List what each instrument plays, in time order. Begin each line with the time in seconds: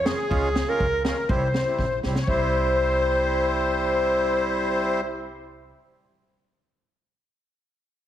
Already playing: upright bass F2
0.05 accordion A#3 C#4 F4 G#4, clarinet G#4, snare
0.29 upright bass C#2, accordion G#3 C#4 F4, kick
0.56 snare
0.67 accordion G#3 C#4 F4 A#4, clarinet A#4
0.80 upright bass C#2, kick
1.04 accordion G#3 C#4 F4 A#4, clarinet A#4, snare
1.29 upright bass C2, accordion G3 C4 E4 C5, clarinet C5, kick
1.37 accordion C#5
1.43 accordion C5
1.54 snare
1.66 accordion G3 C4 E4
1.78 upright bass A#1, kick, snare
2.03 upright bass C2, accordion G3 C4 E4, snare
2.15 snare
2.22 accordion C#5
2.27 upright bass C2, accordion G3 C4 E4 C5, clarinet C5, kick